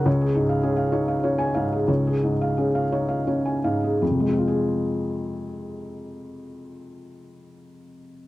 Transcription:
felt piano
0.06 C#2 C#5
0.21 G#4
0.35 G#2
0.49 F5
0.63 C#4 G#4
0.76 F5
0.92 D#4 C#5
1.08 F5
1.23 C#4 C#5
1.38 G#5
1.54 G#2 F5
1.72 G#4
1.88 C#2 C#5
2.07 G#4
2.24 G#2
2.41 F5
2.57 C#4 G#4
2.75 F5
2.92 D#4 C#5
3.08 F5
3.27 C#4 C#5
3.45 G#5
3.64 G#2 F5
3.84 G#4
4.02 F2
4.11 C3
4.20 G#3
4.29 C4
4.38 F4
4.48 G#4

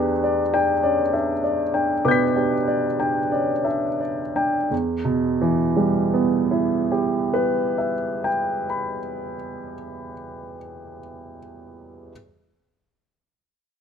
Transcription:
grand piano
Already playing: E2 D4 G4 B4
0.23 D5
0.53 D4 G5
0.83 C#4 D5
1.13 D4 E5
1.44 D5
1.74 D4 G5
2.05 B2 B4 D6 G6
2.11 B6
2.36 D4 G4
2.67 D5
3.00 D4 G5
3.31 C#4 D5
3.65 D4 E5
4.00 D5
4.36 D4 G5
4.71 E2
5.05 B2
5.41 E3
5.76 G3
6.14 B3
6.51 E4
6.92 G4
7.34 B4
7.78 E5
8.24 G5
8.70 B5

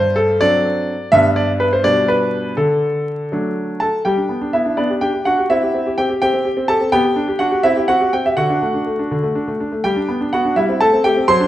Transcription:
grand piano
Already playing: G2 C5
0.16 A4
0.41 F#3 C4 D4 D5
1.12 G2 G3 B3 D4 E5
1.36 D5
1.60 B4
1.73 C5
1.84 B2 G3 D4 D5
2.08 B4
2.57 D3 A4
3.32 F#3 A3 D4
3.80 A4 A5
4.05 G3 G4 G5
4.17 D4
4.29 B3
4.41 D4
4.53 B3 E4 E5
4.65 D4
4.77 B3 D4 D5
4.90 G4
5.01 D4 G4 G5
5.13 G4
5.25 D4 F#4 F#5
5.38 G4
5.50 C4 E4 E5
5.63 G4
5.74 C4
5.86 G4
5.98 C4 G4 G5
6.10 G4
6.22 C4 G4 G5
6.33 C4
6.45 G4
6.57 C4
6.68 G4 A4 A5
6.81 C4
6.92 B3 G4 G5
7.04 G4
7.16 D4
7.28 G4
7.39 D4 F#4 F#5
7.51 G4
7.63 C4 E4 E5
7.76 G4
7.88 C4 F#4 F#5
8.01 G4
8.13 C4 G5
8.26 G4 E5
8.37 D3 F#4 F#5
8.50 D4
8.62 A3
8.74 D4
8.86 A3
8.99 D4
9.11 D3
9.23 A3
9.35 D4
9.48 A3
9.60 D4
9.72 A3
9.84 G3 G4 G5
9.96 D4
10.08 B3
10.21 D4
10.33 B3 F#4 F#5
10.45 D4
10.56 G3 E4 E5
10.69 C4
10.81 A3 A4 A5
10.93 C4
11.04 A3 G4 G5
11.17 C4
11.28 F#3 C5 C6
11.40 D4

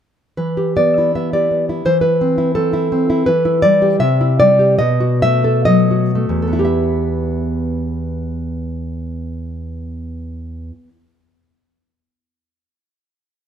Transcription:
nylon-string guitar
0.37 E3 B4
0.57 G4
0.77 B3 D5
0.98 E4
1.15 B3 E5
1.33 G4 D5
1.51 B3
1.69 E4
1.85 E3 C5
2.01 E4 B4
2.21 C4
2.38 E4
2.55 C4 A4
2.73 E4
2.92 C4
3.10 E4
3.26 E3 B4
3.45 E4
3.62 G3 D5
3.82 G4
4.00 C3 E5
4.21 E4
4.40 G3 D5
4.59 G4
4.79 B2 D#5
5.00 F#4
5.22 A3 E5
5.44 A4
5.65 F#3 D#5
5.91 F#4
6.15 A3
6.29 E2
6.42 A4
6.47 B3
6.53 E4
6.59 G4
6.65 E5

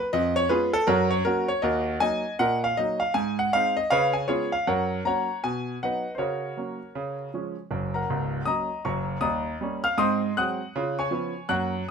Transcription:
grand piano
0.13 F2 D#5
0.36 C#5
0.49 G#3 B3 C#4 F4 G#4 B4
0.73 A4
0.87 F#2 C#4 F#4 A#4
1.11 C#5
1.25 F#3 A#3 C#4 F#4 A#4
1.48 C#5
1.62 D#2 F#4 A#4 D#5
2.00 F#3 A#3 D#4 D#5 G#5
2.39 A#2 A#4 D#5 F#5
2.64 F5
2.77 F#3 A#3 D#4 D#5
3.00 F5
3.14 G#2 G#5
3.39 F#5
3.53 G#3 C4 D#4 F5
3.77 D#5
3.90 C#3 B4 C#5 F5
4.13 G#5
4.28 G#3 B3 C#4 F4 G#4 C#5
4.52 F5
4.67 F#2 A#4 C#5 F#5
5.05 F#3 A#3 C#4 C#5 F#5 A#5
5.44 B2 G#5
5.83 F#3 B3 D#4 B4 D#5 F#5
6.15 C#3 C5 C#5
6.19 F#4 A#4
6.57 F#3 A#3 C#4
6.95 C#3
7.34 F3 G#3 C#4
7.71 F#1 F#2
7.94 A#4 F#5 A#5
8.10 C#1 C#2
8.46 F#3 A#3 C#4 D#5 A#5 D#6
8.85 F#1 F#2 C#5 A#5 C#6
9.21 D#2 G3 D#5 A#5 D#6
9.61 G3 A#3 C#4
9.84 F5 F6
9.98 G#2 C4 D#5 C6 D#6
10.37 F#3 G#3 C4 F#5 D#6 F#6
10.76 C#3 F4
10.99 C#5 G#5 C#6
11.11 F3 B3 C#4
11.49 F#2 A#3 F#5 C#6 F#6

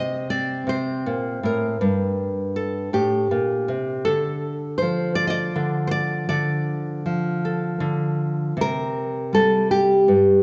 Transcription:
nylon-string guitar
Already playing: C3 D#5
0.30 C4 D5
0.67 C3 C5
1.06 A#2
1.43 A2 A#4
1.81 G2 D4
2.56 A4
2.93 A2 G4
3.31 A#2
3.68 C3
4.05 D3 A4
4.78 C5
4.82 F3
5.15 D5
5.27 D5 D#5
5.56 D3
5.87 C5 D5
6.29 D3 D5
7.06 F3
7.45 A4
7.80 D3
8.57 C3
8.61 A#4
9.33 G3 A4
9.71 G4
10.08 G2

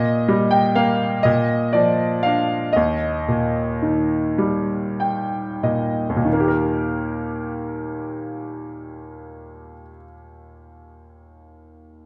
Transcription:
grand piano
Already playing: A#2 D#5
0.29 G3
0.51 G5
0.75 A#3 F5
1.23 A#2 D#5
1.73 F3 D5
2.23 D4 F5
2.73 D#2 D#5
3.28 A#2
3.82 D#3
4.38 G3
5.00 G5
5.63 A#2 D#5
6.09 D#2
6.17 A#2
6.25 D#3
6.33 A#3
6.40 G4
6.48 A#4

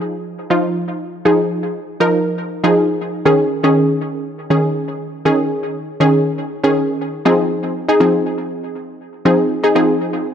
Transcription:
synth pluck
0.50 F3 D#4 F4
1.25 F3 D#4 G#4
2.00 F3 D#4 A#4
2.64 F3 D#4 G#4
3.25 D#3 C#4 G#4
3.64 D#3 C#4 G#4
4.50 D#3 C#4 G#4
5.25 D#3 C#4 G#4
6.00 D#3 C#4 G#4
6.64 D#3 C#4 G#4
7.25 F3 C4 D#4 G#4
7.89 D#4 G#4
8.00 F3 C4 D#4 G#4
9.25 F3 C4 D#4 G#4
9.64 D#4 G#4
9.75 F3 C4 D#4 G#4

